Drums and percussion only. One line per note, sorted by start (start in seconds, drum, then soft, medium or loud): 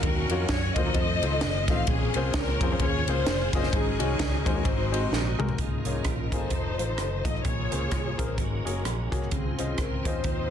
0.03 kick loud
0.03 ride medium
0.30 ride medium
0.48 kick medium
0.48 snare loud
0.48 ride medium
0.76 kick loud
0.76 ride medium
0.94 kick loud
0.94 ride medium
1.23 ride medium
1.41 snare loud
1.41 ride medium
1.68 kick loud
1.68 snare soft
1.68 ride medium
1.87 kick loud
1.87 ride medium
2.14 ride medium
2.34 kick medium
2.34 snare loud
2.34 ride medium
2.61 kick loud
2.61 ride medium
2.79 kick medium
2.79 ride medium
3.08 ride medium
3.26 snare loud
3.26 ride medium
3.53 kick loud
3.53 snare soft
3.53 ride medium
3.63 snare soft
3.73 kick loud
3.73 ride medium
4.00 ride medium
4.19 kick medium
4.19 snare loud
4.19 ride medium
4.46 kick loud
4.46 ride medium
4.65 kick loud
4.65 ride medium
4.94 ride medium
5.13 snare medium
5.40 mid tom loud
5.49 floor tom medium
5.58 kick loud
5.58 closed hi-hat medium
5.85 closed hi-hat medium
6.04 kick medium
6.04 cross-stick medium
6.04 closed hi-hat medium
6.32 kick medium
6.32 closed hi-hat medium
6.50 kick medium
6.50 closed hi-hat medium
6.79 closed hi-hat medium
6.98 cross-stick medium
6.98 closed hi-hat medium
7.25 kick medium
7.25 cross-stick soft
7.25 closed hi-hat medium
7.35 cross-stick soft
7.45 kick loud
7.45 closed hi-hat medium
7.72 closed hi-hat medium
7.91 kick medium
7.91 cross-stick medium
7.91 closed hi-hat medium
8.19 kick medium
8.19 closed hi-hat medium
8.38 kick medium
8.38 closed hi-hat medium
8.67 closed hi-hat medium
8.85 cross-stick medium
8.85 closed hi-hat medium
9.12 kick medium
9.12 cross-stick soft
9.12 closed hi-hat medium
9.22 cross-stick soft
9.31 kick loud
9.31 closed hi-hat medium
9.59 closed hi-hat medium
9.78 kick medium
9.78 cross-stick medium
9.78 closed hi-hat medium
10.05 kick medium
10.05 closed hi-hat medium
10.24 kick medium
10.24 closed hi-hat medium